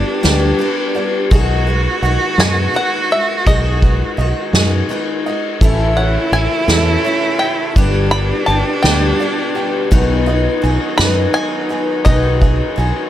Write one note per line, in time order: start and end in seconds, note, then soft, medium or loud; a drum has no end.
0.00 0.23 G3 medium
0.00 0.23 B3 medium
0.00 0.23 D4 medium
0.00 1.31 D4 loud
0.00 0.22 G4 medium
0.00 0.58 B4 medium
0.00 0.94 D5 medium
0.23 0.52 D2 loud
0.23 0.61 G2 medium
0.23 0.60 D3 medium
0.23 0.57 G3 medium
0.23 0.59 B3 medium
0.23 0.60 D4 medium
0.23 0.59 G4 medium
0.23 1.31 G4 medium
0.23 snare loud
0.23 ride medium
0.59 0.95 G3 medium
0.59 0.96 B3 medium
0.59 0.95 D4 medium
0.59 0.93 G4 medium
0.59 1.31 B4 medium
0.59 ride medium
0.95 1.31 G3 soft
0.95 1.32 B3 soft
0.95 1.32 D4 medium
0.95 1.31 G4 medium
0.95 1.31 D5 medium
0.95 ride medium
1.29 1.86 B1 loud
1.29 1.67 B2 medium
1.29 1.68 D#3 medium
1.29 1.68 G#3 loud
1.29 5.25 F#4 loud
1.29 2.37 G#4 medium
1.29 kick loud
1.29 ride medium
1.33 1.67 D#4 medium
1.33 1.66 F#4 loud
1.67 2.03 G#3 medium
1.67 2.04 D#4 medium
1.67 2.03 F#4 medium
1.67 2.73 B4 medium
1.67 ride medium
2.02 2.16 B1 medium
2.02 2.39 D#3 medium
2.02 2.39 G#3 medium
2.02 2.39 D#4 medium
2.02 2.38 F#4 medium
2.02 3.46 F#5 medium
2.02 ride medium
2.38 2.66 F#2 loud
2.38 2.76 B2 medium
2.38 2.73 D#3 medium
2.38 2.74 G#3 medium
2.38 2.75 D#4 medium
2.38 2.75 F#4 medium
2.38 3.45 G#4 medium
2.38 2.76 G#5 loud
2.38 snare loud
2.38 ride medium
2.74 3.10 D#3 medium
2.74 3.11 G#3 medium
2.74 3.12 D#4 medium
2.74 3.10 F#4 medium
2.74 3.81 B4 medium
2.74 3.13 F#5 loud
2.74 ride medium
3.11 3.47 G#3 soft
3.11 3.47 F#4 soft
3.11 3.47 E5 medium
3.11 ride medium
3.46 4.02 B1 loud
3.46 3.83 B2 medium
3.46 3.83 D#3 medium
3.46 3.83 G#3 medium
3.46 3.83 D#4 medium
3.46 3.81 F#4 medium
3.46 4.52 G#4 medium
3.46 5.22 D#5 medium
3.46 kick loud
3.46 ride medium
3.82 4.18 G#3 soft
3.82 4.18 D#4 soft
3.82 4.18 F#4 medium
3.82 4.89 B4 medium
3.82 kick medium
3.82 ride medium
4.17 4.32 B1 medium
4.17 4.54 D#3 medium
4.17 4.54 G#3 medium
4.17 4.54 D#4 medium
4.17 4.53 F#4 medium
4.17 5.25 D#5 medium
4.17 ride medium
4.53 4.81 F#2 loud
4.53 4.91 B2 medium
4.53 4.88 D#3 medium
4.53 4.89 G#3 medium
4.53 4.90 D#4 medium
4.53 4.90 F#4 medium
4.53 5.62 G#4 medium
4.53 snare loud
4.53 ride medium
4.89 5.25 D#3 medium
4.89 5.26 G#3 medium
4.89 5.26 D#4 medium
4.89 5.25 F#4 medium
4.89 5.62 B4 medium
4.89 ride medium
5.25 5.62 G#3 soft
5.25 5.63 D#4 soft
5.25 5.62 F#4 medium
5.25 5.62 D#5 medium
5.25 ride medium
5.60 6.16 A1 loud
5.60 5.98 A2 medium
5.60 7.74 C#3 medium
5.60 7.74 E3 medium
5.60 5.98 E3 loud
5.60 7.74 A3 medium
5.60 5.98 A3 medium
5.60 5.98 C#4 medium
5.60 7.77 E4 loud
5.60 7.75 E4 medium
5.60 5.96 E4 loud
5.60 6.67 A4 medium
5.60 7.75 A4 medium
5.60 kick loud
5.60 ride medium
5.97 6.32 A3 soft
5.97 6.33 C#4 soft
5.97 6.33 E4 soft
5.97 7.03 C#5 medium
5.97 6.33 F#5 medium
5.97 ride medium
6.32 6.46 A1 medium
6.32 6.68 E3 medium
6.32 6.68 A3 medium
6.32 6.67 C#4 medium
6.32 6.67 E4 medium
6.32 7.38 E5 medium
6.32 7.39 G#5 medium
6.32 ride medium
6.68 6.96 E2 loud
6.68 7.06 A2 medium
6.68 7.03 E3 medium
6.68 7.05 A3 medium
6.68 7.05 C#4 medium
6.68 7.04 E4 medium
6.68 7.76 A4 medium
6.68 snare loud
6.68 ride loud
7.04 7.41 E3 medium
7.04 7.41 A3 medium
7.04 7.41 C#4 medium
7.04 7.39 E4 medium
7.04 7.76 C#5 medium
7.04 ride medium
7.39 7.77 C#4 soft
7.39 7.76 E4 soft
7.39 7.76 E5 medium
7.39 8.11 G5 medium
7.39 ride medium
7.44 7.77 A3 soft
7.75 8.31 G1 loud
7.75 8.12 G2 medium
7.75 9.89 B2 medium
7.75 9.89 D3 medium
7.75 8.12 D3 medium
7.75 9.89 G3 medium
7.75 8.13 G3 medium
7.75 8.13 B3 medium
7.75 9.94 D4 loud
7.75 9.89 D4 medium
7.75 8.11 D4 loud
7.75 9.89 G4 medium
7.75 8.10 G4 medium
7.75 8.82 B4 medium
7.75 kick loud
7.75 ride medium
8.11 8.46 G3 soft
8.11 8.47 B3 soft
8.11 8.48 D4 soft
8.11 8.48 G4 medium
8.11 9.18 D5 medium
8.11 8.46 B5 loud
8.11 ride medium
8.46 8.62 G1 medium
8.46 8.84 G3 medium
8.46 8.83 B3 medium
8.46 8.83 D4 medium
8.46 8.82 G4 medium
8.46 9.54 G5 medium
8.46 8.80 A5 medium
8.46 ride medium
8.83 9.11 D2 loud
8.83 9.21 G2 medium
8.83 9.20 D3 medium
8.83 9.18 G3 medium
8.83 9.19 B3 medium
8.83 9.20 D4 medium
8.83 9.19 G4 medium
8.83 9.90 B4 medium
8.83 9.60 G5 medium
8.83 snare loud
8.83 ride medium
9.20 9.55 G3 medium
9.20 9.56 B3 medium
9.20 9.55 D4 medium
9.20 9.54 G4 medium
9.20 9.91 D5 medium
9.20 ride medium
9.55 9.92 G3 soft
9.55 9.91 B3 soft
9.55 9.92 D4 soft
9.55 9.91 G4 medium
9.55 9.91 G5 medium
9.55 ride medium
9.91 10.46 B1 loud
9.91 10.27 B2 medium
9.91 13.10 D#3 medium
9.91 10.27 D#3 loud
9.91 13.10 F#3 medium
9.91 10.27 F#3 loud
9.91 13.10 G#3 medium
9.91 13.10 B3 medium
9.91 10.28 B3 loud
9.91 13.10 D#4 loud
9.91 10.27 D#4 loud
9.91 13.10 F#4 medium
9.91 10.25 G#4 loud
9.91 10.97 B4 medium
9.91 kick loud
9.91 ride medium
10.26 10.61 F#3 soft
10.26 10.62 B3 soft
10.26 10.63 D#4 medium
10.26 10.62 G#4 medium
10.26 11.33 D#5 medium
10.26 ride medium
10.62 10.77 B1 medium
10.62 10.98 F#3 medium
10.62 10.97 B3 medium
10.62 10.97 D#4 medium
10.62 10.97 G#4 medium
10.62 11.69 G#5 medium
10.62 ride medium
10.98 11.26 F#2 loud
10.98 11.35 B2 medium
10.98 11.35 D#3 medium
10.98 11.32 F#3 medium
10.98 11.33 B3 medium
10.98 11.34 D#4 medium
10.98 11.34 G#4 medium
10.98 12.04 B4 medium
10.98 11.34 B5 loud
10.98 snare loud
10.98 ride medium
11.33 11.70 F#3 medium
11.33 11.70 B3 medium
11.33 11.69 D#4 medium
11.33 11.68 G#4 medium
11.33 12.41 D#5 medium
11.33 12.02 G#5 loud
11.33 ride medium
11.69 12.05 F#3 soft
11.69 12.05 B3 soft
11.69 12.05 D#4 medium
11.69 12.05 G#4 soft
11.69 12.76 G#5 medium
11.69 ride medium
12.05 12.60 B1 loud
12.05 12.41 B2 medium
12.05 12.41 D#3 medium
12.05 12.41 F#3 medium
12.05 12.42 B3 medium
12.05 12.41 D#4 medium
12.05 12.40 G#4 medium
12.05 13.10 B4 medium
12.05 13.10 D#5 medium
12.05 kick loud
12.05 ride medium
12.41 12.75 F#3 soft
12.41 12.76 B3 medium
12.41 12.77 D#4 medium
12.41 12.77 G#4 medium
12.41 13.10 D#5 medium
12.41 kick medium
12.41 ride medium
12.76 12.91 B1 medium
12.76 13.10 F#3 medium
12.76 13.10 B3 medium
12.76 13.10 D#4 medium
12.76 13.10 G#4 medium
12.76 13.10 G#5 medium
12.76 ride medium